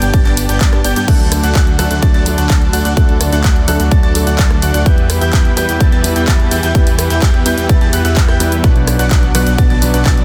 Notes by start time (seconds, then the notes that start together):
Already playing: B3 D4
0.02 G1 B3 D4 G4 D5 G5 G6, closed hi-hat, cabasa
0.14 G1 B3 D4 G4 D5 A5 A6, kick, closed hi-hat, swell, cabasa
0.25 G1 B3 D4 G4 D5 A5 A6, clap, closed hi-hat
0.37 open hi-hat, cabasa
0.49 G1 B3 D4 G4 D5 G5 G6, closed hi-hat, cabasa
0.61 G2 B3 D4 G4 D5 A5 A6, kick, clap, closed hi-hat, cabasa
0.73 cross-stick, closed hi-hat
0.84 G1 B3 D4 G4 D5 G5 G6, open hi-hat, cabasa
0.96 G2 B3 D4 G4 D5 G5 G6, closed hi-hat, cabasa
1.07 D2 D3 F#3 A3 D4 F#4 A4 D5 F#5 F#6, kick, closed hi-hat, crash, cabasa
1.20 closed hi-hat
1.32 cross-stick, open hi-hat, cabasa
1.43 D2 A3 D4 F#4 D5 F#5 F#6, closed hi-hat, cabasa
1.55 D2 A3 D4 F#4 D5 F#5 F#6, kick, clap, closed hi-hat, cabasa
1.67 closed hi-hat
1.78 D2 F#3 A3 D4 F#4 A4 D5 F#5 F#6, cross-stick, open hi-hat, cabasa
1.91 D2 A3 D4 F#4 D5 F#5 F#6, closed hi-hat, cabasa
2.02 D2 A3 D4 F#4 D5 A5 A6, kick, closed hi-hat, cabasa
2.14 D2 A3 D4 F#4 D5 A5 A6, closed hi-hat
2.25 F#3 A3 D4 A4, open hi-hat, cabasa
2.38 D2 A3 D4 F#4 D5 F#5 F#6, closed hi-hat, cabasa
2.50 D2 A3 D4 D5 A5, kick, clap, closed hi-hat, cabasa
2.62 closed hi-hat
2.73 D2 A3 D4 F#4 D5 F#5 F#6, open hi-hat, cabasa
2.85 D2 A3 D4 F#4 D5 F#5 F#6, closed hi-hat, cabasa
2.96 D2 F#3 A3 D4 F#4 A4 D5 F#5 F#6, kick, closed hi-hat, cabasa
3.09 closed hi-hat
3.21 cross-stick, open hi-hat, cabasa
3.32 D2 A3 D4 F#4 D5 F#5 F#6, closed hi-hat, cabasa
3.44 D2 D4 D5 F#5 F#6, kick, clap, closed hi-hat, cabasa
3.56 closed hi-hat
3.67 D2 F#3 A3 D4 F#4 A4 D5 F#5 F#6, open hi-hat, cabasa
3.80 D2 A3 D4 F#4 D5 F#5 F#6, closed hi-hat, cabasa
3.91 D2 A3 D4 F#4 D5 A5 A6, kick, closed hi-hat, cabasa
4.03 D2 A3 D4 F#4 D5 A5 A6, closed hi-hat
4.14 F#3 A3 D4 A4, open hi-hat, cabasa
4.27 D2 A3 D4 F#4 D5 F#5 F#6, closed hi-hat, cabasa
4.39 D2 A3 D4 F#4 D5 A5 A6, kick, clap, closed hi-hat, cabasa
4.51 cross-stick, closed hi-hat
4.62 D2 A3 D4 F#4 D5 F#5 F#6, open hi-hat, cabasa
4.74 D2 A3 D4 F#4 D5 F#5 F#6, closed hi-hat, cabasa
4.85 E2 E3 G3 B3 E4 G4 B4 E5, kick, closed hi-hat, cabasa
4.98 closed hi-hat
5.10 cross-stick, open hi-hat, cabasa
5.21 E2 B3 E4 G4 E5 G5 G6, closed hi-hat, cabasa
5.33 E2 G4 G6, kick, clap, closed hi-hat, cabasa
5.45 closed hi-hat
5.56 E2 G3 B3 E4 G4 B4 E5 G5 G6, cross-stick, open hi-hat, cabasa
5.69 E2 B3 E4 G4 E5 G5 G6, closed hi-hat, cabasa
5.80 E2 B3 E4 G4 E5 A5 A6, kick, closed hi-hat, cabasa
5.92 E2 B3 E4 G4 E5 A5 A6, closed hi-hat
6.03 G3 B3 E4 B4, open hi-hat, cabasa
6.16 E2 B3 E4 G4 E5 G5 G6, closed hi-hat, cabasa
6.28 E2 B3 E4 G4 E5 A5 A6, kick, clap, closed hi-hat, cabasa
6.40 closed hi-hat
6.51 E2 B3 E4 G4 E5 G5 G6, open hi-hat, cabasa
6.63 E2 B3 E4 G4 E5 G5 G6, closed hi-hat, cabasa
6.74 E2 G3 B3 E4 G4 B4 G5, kick, closed hi-hat, cabasa
6.87 open hi-hat
6.99 cross-stick, open hi-hat, cabasa
7.10 E2 B3 E4 G4 E5 G5 G6, closed hi-hat, cabasa
7.22 E2 B3 E4 G4 E5 G5, kick, clap, closed hi-hat, cabasa
7.34 closed hi-hat
7.45 E2 G3 B3 E4 G4 B4 E5 G5 G6, open hi-hat, cabasa
7.58 E2 B3 E4 G4 E5 G5 G6, closed hi-hat, cabasa
7.69 E2 B3 E4 G4 E5, kick, closed hi-hat, cabasa
7.81 E2 B3 E4 G4 E5 A5 A6, closed hi-hat
7.93 E2 B3 E4 G4 E5 F#5 F#6, open hi-hat, cabasa
8.05 E2 B3 E4 G4 E5 F#5 F#6, closed hi-hat, cabasa
8.17 kick, clap, closed hi-hat, cabasa
8.28 E2 B3 E4 G4 E5 G5 G6, cross-stick, closed hi-hat
8.40 E2 G3 B3 E4 G4 B4 E5 G5 G6, open hi-hat, cabasa
8.52 closed hi-hat, cabasa
8.63 B1 B2 F#3 B3 D4 F#4 B4 D5 F#5 F#6, kick, closed hi-hat, cabasa
8.76 closed hi-hat
8.87 cross-stick, open hi-hat, cabasa
8.99 B1 B3 D4 F#4 D5 F#5 F#6, closed hi-hat, cabasa
9.11 B1 B3 D4 F#4 F#5 F#6, kick, clap, closed hi-hat, cabasa
9.23 closed hi-hat
9.34 B1 B2 F#3 B3 D4 F#4 B4 D5 F#5 F#6, cross-stick, open hi-hat, cabasa
9.47 B1 B3 D4 F#4 D5 F#5 F#6, closed hi-hat, cabasa
9.58 B1 B3 D4 F#4 D5 A5 A6, kick, closed hi-hat, cabasa
9.70 B1 B3 D4 F#4 D5 A5 A6, closed hi-hat
9.81 B2 F#3 B3 D4 B4, open hi-hat, cabasa
9.94 B1 B3 D4 F#4 D5 F#5 F#6, closed hi-hat, cabasa
10.06 B1 B3 D4 F#4 D5 A5 A6, kick, clap, closed hi-hat, cabasa
10.17 closed hi-hat